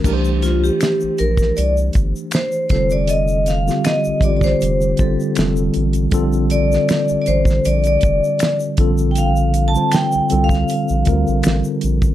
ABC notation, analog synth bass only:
X:1
M:4/4
L:1/16
Q:"Swing 16ths" 1/4=79
K:Bb
V:1 name="Analog synth bass" clef=bass
C,,4 z B,,, B,,,2 C,,2 G,,, z3 F,,,2- | F,,,4 z A,,, A,,,2 F,,,2 G,,, z F,,,2 A,,,2 | B,,,4 z A,,, A,,,2 B,,,2 F,,, z3 B,,,2- | B,,,4 z C,, C,,2 z B,,, D,, B,,, A,,, z B,,, A,,, |]